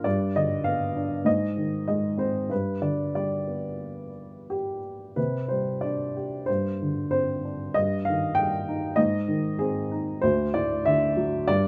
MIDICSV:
0, 0, Header, 1, 2, 480
1, 0, Start_track
1, 0, Tempo, 612245
1, 44, Time_signature, 4, 2, 24, 8
1, 1965, Tempo, 651466
1, 2925, Tempo, 680272
1, 3885, Tempo, 650054
1, 5325, Tempo, 623053
1, 8836, End_track
2, 0, Start_track
2, 0, Title_t, "Upright piano"
2, 0, Program_c, 0, 0
2, 0, Control_c, 0, 64, 127
2, 34, Note_on_c, 0, 74, 77
2, 45, Note_on_c, 0, 43, 60
2, 54, Control_c, 0, 64, 0
2, 215, Control_c, 0, 64, 127
2, 280, Note_off_c, 0, 74, 0
2, 281, Note_on_c, 0, 50, 44
2, 282, Note_on_c, 0, 75, 71
2, 503, Note_on_c, 0, 77, 74
2, 508, Note_on_c, 0, 59, 45
2, 523, Note_off_c, 0, 75, 0
2, 755, Note_on_c, 0, 62, 42
2, 961, Note_off_c, 0, 43, 0
2, 968, Note_off_c, 0, 50, 0
2, 971, Note_off_c, 0, 59, 0
2, 979, Note_on_c, 0, 44, 54
2, 984, Note_off_c, 0, 62, 0
2, 987, Note_on_c, 0, 75, 76
2, 998, Note_off_c, 0, 77, 0
2, 998, Control_c, 0, 64, 0
2, 1122, Control_c, 0, 64, 127
2, 1225, Note_on_c, 0, 51, 40
2, 1459, Note_off_c, 0, 75, 0
2, 1471, Note_on_c, 0, 75, 60
2, 1476, Note_on_c, 0, 56, 43
2, 1706, Note_on_c, 0, 60, 44
2, 1715, Note_on_c, 0, 72, 63
2, 1724, Note_off_c, 0, 75, 0
2, 1931, Note_off_c, 0, 44, 0
2, 1941, Note_off_c, 0, 51, 0
2, 1947, Note_off_c, 0, 72, 0
2, 1952, Note_off_c, 0, 60, 0
2, 1953, Note_off_c, 0, 56, 0
2, 1957, Note_on_c, 0, 43, 49
2, 1969, Note_on_c, 0, 71, 62
2, 1976, Control_c, 0, 64, 0
2, 2124, Control_c, 0, 64, 127
2, 2190, Note_on_c, 0, 50, 40
2, 2195, Note_on_c, 0, 74, 63
2, 2211, Note_off_c, 0, 71, 0
2, 2420, Note_off_c, 0, 74, 0
2, 2437, Note_on_c, 0, 55, 38
2, 2441, Note_on_c, 0, 74, 66
2, 2678, Note_on_c, 0, 59, 36
2, 3131, Note_off_c, 0, 50, 0
2, 3378, Note_off_c, 0, 55, 0
2, 3412, Note_on_c, 0, 67, 60
2, 3437, Note_off_c, 0, 74, 0
2, 3621, Note_off_c, 0, 59, 0
2, 3853, Note_off_c, 0, 43, 0
2, 3880, Note_on_c, 0, 71, 62
2, 3884, Note_on_c, 0, 48, 45
2, 3895, Control_c, 0, 64, 0
2, 3902, Note_off_c, 0, 67, 0
2, 4014, Control_c, 0, 64, 127
2, 4118, Note_on_c, 0, 72, 57
2, 4132, Note_off_c, 0, 71, 0
2, 4136, Note_on_c, 0, 55, 39
2, 4358, Note_on_c, 0, 74, 65
2, 4373, Note_off_c, 0, 72, 0
2, 4378, Note_on_c, 0, 62, 40
2, 4620, Note_on_c, 0, 67, 39
2, 4822, Note_off_c, 0, 48, 0
2, 4834, Note_off_c, 0, 55, 0
2, 4838, Note_on_c, 0, 72, 72
2, 4841, Note_off_c, 0, 62, 0
2, 4849, Note_off_c, 0, 67, 0
2, 4860, Note_off_c, 0, 74, 0
2, 4862, Control_c, 0, 64, 0
2, 4864, Note_on_c, 0, 43, 50
2, 4971, Control_c, 0, 64, 127
2, 5102, Note_on_c, 0, 50, 42
2, 5305, Note_off_c, 0, 72, 0
2, 5316, Note_on_c, 0, 72, 69
2, 5330, Note_on_c, 0, 60, 39
2, 5579, Note_on_c, 0, 62, 40
2, 5785, Note_off_c, 0, 43, 0
2, 5792, Note_off_c, 0, 50, 0
2, 5796, Note_off_c, 0, 60, 0
2, 5806, Note_off_c, 0, 62, 0
2, 5806, Note_on_c, 0, 75, 83
2, 5817, Note_off_c, 0, 72, 0
2, 5817, Control_c, 0, 64, 0
2, 5818, Note_on_c, 0, 43, 52
2, 5971, Control_c, 0, 64, 127
2, 6042, Note_on_c, 0, 77, 74
2, 6051, Note_off_c, 0, 75, 0
2, 6064, Note_on_c, 0, 51, 45
2, 6271, Note_on_c, 0, 79, 85
2, 6288, Note_off_c, 0, 77, 0
2, 6298, Note_on_c, 0, 55, 44
2, 6528, Note_on_c, 0, 63, 46
2, 6716, Note_off_c, 0, 79, 0
2, 6730, Note_off_c, 0, 43, 0
2, 6741, Note_on_c, 0, 75, 81
2, 6742, Note_off_c, 0, 51, 0
2, 6747, Note_off_c, 0, 55, 0
2, 6751, Note_off_c, 0, 63, 0
2, 6752, Note_on_c, 0, 44, 55
2, 6763, Control_c, 0, 64, 0
2, 6895, Control_c, 0, 64, 127
2, 6985, Note_on_c, 0, 51, 50
2, 7226, Note_on_c, 0, 68, 70
2, 7239, Note_off_c, 0, 75, 0
2, 7242, Note_on_c, 0, 60, 47
2, 7478, Note_on_c, 0, 63, 48
2, 7687, Note_off_c, 0, 44, 0
2, 7693, Note_off_c, 0, 51, 0
2, 7709, Note_off_c, 0, 60, 0
2, 7709, Note_on_c, 0, 72, 80
2, 7712, Note_off_c, 0, 63, 0
2, 7720, Note_on_c, 0, 38, 61
2, 7728, Control_c, 0, 64, 0
2, 7730, Note_off_c, 0, 68, 0
2, 7876, Control_c, 0, 64, 127
2, 7959, Note_on_c, 0, 74, 78
2, 7963, Note_off_c, 0, 72, 0
2, 7967, Note_on_c, 0, 45, 49
2, 8182, Note_off_c, 0, 74, 0
2, 8202, Note_on_c, 0, 76, 85
2, 8203, Note_on_c, 0, 50, 50
2, 8444, Note_on_c, 0, 54, 47
2, 8656, Note_off_c, 0, 38, 0
2, 8665, Note_off_c, 0, 45, 0
2, 8670, Note_off_c, 0, 50, 0
2, 8678, Note_off_c, 0, 54, 0
2, 8681, Note_on_c, 0, 74, 99
2, 8689, Note_on_c, 0, 43, 66
2, 8694, Control_c, 0, 64, 0
2, 8699, Note_off_c, 0, 76, 0
2, 8830, Control_c, 0, 64, 127
2, 8836, Note_off_c, 0, 43, 0
2, 8836, Note_off_c, 0, 74, 0
2, 8836, End_track
0, 0, End_of_file